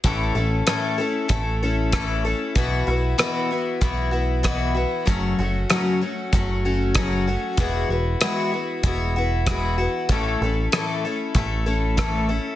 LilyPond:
<<
  \new Staff \with { instrumentName = "Twelve-string acoustic guitar" } { \time 4/4 \key a \major \tempo 4 = 96 <a, e a cis' e' a'>8 <a cis' e' a'>8 <a, e a cis' e' a'>8 <a cis' e' a'>8 <a cis' e' a'>8 <a cis' e' a'>8 <a, e a cis' e' a'>8 <a cis' e' a'>8 | <b, e b e' fis'>8 <b e' fis'>8 <b, e b e' fis'>8 <b e' fis'>8 <e b e' fis'>8 <b e' fis'>8 <b, e b e' fis'>8 <b e' fis'>8 | <fis, cis fis a cis' fis'>8 <fis a cis' fis'>8 <fis, cis fis a cis' fis'>8 <fis a cis' fis'>8 <fis a cis' fis'>8 <fis a cis' fis'>8 <fis, cis fis a cis' fis'>8 <fis a cis' fis'>8 | <e gis b e' fis'>8 <b e' fis'>8 <e gis b e' fis'>8 <b e' fis'>8 <gis b e' fis'>8 <b e' fis'>8 <e gis b e' fis'>8 <b e' fis'>8 |
<a, e a cis' e' a'>8 <a cis' e' a'>8 <a, e a cis' e' a'>8 <a cis' e' a'>8 <a cis' e' a'>8 <a cis' e' a'>8 <a, e a cis' e' a'>8 <a cis' e' a'>8 | }
  \new Staff \with { instrumentName = "Picked electric bass" } { \clef bass \time 4/4 \key a \major a,,8 a,,8 r4 a,,2 | b,,8 b,,8 r4 b,,2 | fis,,8 fis,,8 r4 fis,,2 | e,,8 e,,8 r4 e,,2 |
a,,8 a,,8 r4 a,,2 | }
  \new DrumStaff \with { instrumentName = "Drums" } \drummode { \time 4/4 <hh bd>4 <hh ss>4 <hh bd>4 <hh bd ss>4 | <hh bd>4 <hh ss>4 <hh bd>4 <hh bd ss>4 | <hh bd>4 <hh ss>4 <hh bd>4 <hh bd ss>4 | <hh bd>4 <hh ss>4 <hh bd>4 <hh bd ss>4 |
<hh bd>4 <hh ss>4 <hh bd>4 <hh bd ss>4 | }
>>